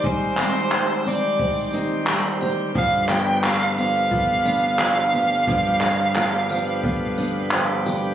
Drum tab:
TB |-x-x-x-x|-x-x-x-x|-x-x-x-x|
CP |-xx---x-|-xx---x-|-xx---x-|
BD |o---o---|o---o---|o---o---|